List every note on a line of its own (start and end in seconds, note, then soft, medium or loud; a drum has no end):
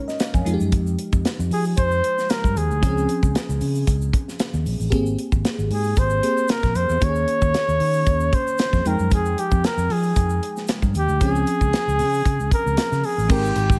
0.00 0.42 G#3 medium
0.00 0.43 C#4 medium
0.00 0.43 D#4 medium
0.00 0.44 A#4 medium
0.00 0.48 C#5 medium
0.08 0.19 D#5 medium
0.08 snare soft
0.08 shaker soft
0.19 0.34 F5 medium
0.19 snare loud
0.19 closed hi-hat medium
0.19 shaker medium
0.34 0.44 F2 medium
0.34 0.59 G#5 medium
0.34 kick medium
0.34 shaker soft
0.45 0.58 F2 medium
0.45 2.52 F3 medium
0.45 2.52 G#3 medium
0.45 2.52 D#4 medium
0.45 0.54 F4 medium
0.45 closed hi-hat medium
0.45 shaker soft
0.54 2.56 G4 medium
0.60 0.72 F#2 medium
0.60 shaker soft
0.72 0.95 F2 medium
0.72 kick loud
0.72 closed hi-hat medium
0.72 shaker medium
0.87 shaker soft
0.99 closed hi-hat medium
1.13 1.23 F2 medium
1.13 kick medium
1.13 shaker soft
1.25 snare loud
1.25 closed hi-hat medium
1.25 shaker medium
1.39 1.49 F2 medium
1.39 shaker medium
1.50 1.73 F3 medium
1.50 1.64 G#4 medium
1.50 open hi-hat medium
1.64 shaker soft
1.77 2.00 F2 medium
1.77 2.32 C5 loud
1.77 kick loud
1.77 closed hi-hat medium
1.77 shaker medium
1.91 shaker soft
2.04 closed hi-hat medium
2.18 snare soft
2.18 shaker soft
2.29 2.59 A#4 loud
2.29 snare loud
2.29 closed hi-hat medium
2.29 shaker medium
2.44 2.54 G2 medium
2.44 kick medium
2.44 shaker soft
2.56 2.68 D#2 medium
2.56 3.62 G#4 medium
2.56 closed hi-hat medium
2.56 shaker soft
2.70 2.81 D2 medium
2.70 shaker soft
2.81 3.05 C#2 loud
2.81 4.88 F3 medium
2.81 4.88 C4 medium
2.81 4.88 C#4 medium
2.81 4.89 G#4 medium
2.81 kick loud
2.81 closed hi-hat medium
2.81 shaker medium
2.98 shaker soft
3.09 closed hi-hat medium
3.09 shaker soft
3.23 3.33 C#2 medium
3.23 kick medium
3.23 shaker soft
3.35 snare loud
3.35 closed hi-hat medium
3.35 shaker medium
3.49 3.59 C#2 medium
3.49 shaker soft
3.61 3.83 C#3 medium
3.61 open hi-hat medium
3.61 shaker soft
3.75 shaker soft
3.87 4.10 C#2 medium
3.87 kick medium
3.87 closed hi-hat medium
3.87 shaker medium
4.01 shaker soft
4.13 kick medium
4.13 closed hi-hat medium
4.28 snare soft
4.28 shaker soft
4.39 snare loud
4.39 closed hi-hat loud
4.39 shaker medium
4.54 4.64 D#2 medium
4.54 shaker soft
4.66 4.78 A#1 medium
4.66 open hi-hat medium
4.66 shaker soft
4.80 4.90 A1 medium
4.80 shaker soft
4.90 5.14 G#1 medium
4.90 6.20 A#3 medium
4.90 6.21 C4 medium
4.90 6.20 G4 medium
4.90 6.21 G#4 medium
4.90 kick loud
4.90 closed hi-hat medium
4.90 shaker medium
5.06 shaker soft
5.19 closed hi-hat medium
5.32 5.43 G#1 medium
5.32 kick medium
5.32 shaker medium
5.45 snare loud
5.45 closed hi-hat medium
5.45 shaker medium
5.58 5.69 G#1 medium
5.58 shaker soft
5.70 5.93 G#2 medium
5.70 6.00 G#4 medium
5.70 open hi-hat medium
5.84 shaker soft
5.96 6.19 G#1 medium
5.96 6.52 C5 loud
5.96 kick medium
5.96 closed hi-hat medium
5.96 shaker medium
6.10 shaker soft
6.23 6.99 A#3 soft
6.23 7.02 C4 soft
6.23 7.01 G4 soft
6.23 7.02 G#4 medium
6.23 closed hi-hat medium
6.37 shaker soft
6.48 6.78 A#4 loud
6.48 snare loud
6.48 closed hi-hat medium
6.48 shaker medium
6.63 6.74 A#1 medium
6.63 kick medium
6.63 snare soft
6.63 shaker soft
6.75 6.87 F2 medium
6.75 7.05 C5 loud
6.75 closed hi-hat medium
6.75 shaker soft
6.89 7.00 E2 medium
6.89 shaker soft
7.00 7.24 D#2 medium
7.00 8.81 D#3 medium
7.00 8.81 A#3 medium
7.00 8.81 C#4 medium
7.00 7.09 G4 medium
7.00 8.36 C#5 loud
7.00 kick loud
7.00 closed hi-hat medium
7.00 shaker medium
7.09 8.85 G#4 medium
7.15 shaker soft
7.28 closed hi-hat medium
7.42 7.52 D#2 medium
7.42 kick medium
7.42 shaker medium
7.54 snare loud
7.54 closed hi-hat medium
7.54 shaker medium
7.68 7.79 D#2 medium
7.68 shaker medium
7.80 8.03 D#3 loud
7.80 open hi-hat medium
7.93 shaker soft
8.06 8.29 D#2 medium
8.06 kick medium
8.06 closed hi-hat medium
8.06 shaker medium
8.20 shaker soft
8.33 8.89 C5 loud
8.33 kick medium
8.33 closed hi-hat medium
8.47 shaker soft
8.58 snare loud
8.58 closed hi-hat medium
8.58 shaker medium
8.73 8.83 F2 medium
8.73 kick medium
8.73 snare soft
8.73 shaker soft
8.85 8.97 F2 medium
8.85 10.90 F3 medium
8.85 10.91 G#3 medium
8.85 10.91 D#4 medium
8.85 9.13 A#4 medium
8.85 10.91 G5 medium
8.85 closed hi-hat medium
8.85 shaker soft
8.99 9.11 F#2 medium
8.99 shaker soft
9.11 9.34 F2 medium
9.11 9.41 G#4 loud
9.11 kick loud
9.11 closed hi-hat medium
9.11 shaker medium
9.25 shaker soft
9.38 9.67 G4 medium
9.38 closed hi-hat medium
9.51 9.62 F2 loud
9.51 kick medium
9.51 shaker medium
9.64 9.93 A#4 medium
9.64 snare loud
9.64 closed hi-hat medium
9.64 shaker medium
9.77 9.88 F2 loud
9.77 shaker soft
9.89 10.12 F3 medium
9.89 10.70 G#4 medium
9.89 open hi-hat medium
10.03 shaker soft
10.16 10.38 F2 medium
10.16 kick medium
10.16 closed hi-hat medium
10.16 shaker medium
10.30 shaker soft
10.43 closed hi-hat medium
10.57 snare soft
10.57 shaker medium
10.67 snare loud
10.67 closed hi-hat medium
10.67 shaker medium
10.82 10.93 G2 medium
10.82 kick medium
10.82 shaker soft
10.94 11.06 D#2 medium
10.94 11.24 G4 loud
10.94 closed hi-hat medium
10.94 shaker soft
11.08 11.19 D2 medium
11.08 shaker soft
11.20 11.43 C#2 medium
11.20 13.25 F3 medium
11.20 13.26 C4 medium
11.20 13.26 C#4 medium
11.20 13.27 G#4 medium
11.20 12.52 G#4 loud
11.20 kick loud
11.20 closed hi-hat medium
11.20 shaker medium
11.35 shaker soft
11.47 closed hi-hat medium
11.47 shaker soft
11.61 11.71 C#2 medium
11.61 kick medium
11.61 shaker medium
11.73 snare loud
11.73 closed hi-hat medium
11.73 shaker medium
11.87 12.00 C#2 medium
11.87 shaker soft
11.99 12.21 C#3 medium
11.99 open hi-hat medium
11.99 shaker soft
12.14 shaker soft
12.25 12.37 C#3 loud
12.25 kick medium
12.25 closed hi-hat medium
12.25 shaker medium
12.39 12.50 C#2 medium
12.39 shaker soft
12.51 13.07 A#4 loud
12.51 kick loud
12.51 closed hi-hat medium
12.66 12.76 C#2 medium
12.66 shaker soft
12.77 snare loud
12.77 closed hi-hat loud
12.77 shaker medium
12.92 13.02 C#3 medium
12.92 snare soft
12.92 shaker soft
13.04 13.33 G#4 loud
13.04 open hi-hat medium
13.18 13.28 A1 medium
13.18 shaker soft
13.28 13.52 G#1 loud
13.28 13.79 G#3 medium
13.28 13.79 C4 medium
13.28 13.79 D#4 medium
13.28 13.79 G4 loud
13.28 13.79 A#4 medium
13.28 13.79 G5 medium
13.28 kick loud
13.28 crash medium
13.28 shaker medium
13.45 shaker soft
13.56 13.78 G#1 loud
13.56 closed hi-hat medium
13.70 kick loud
13.70 shaker medium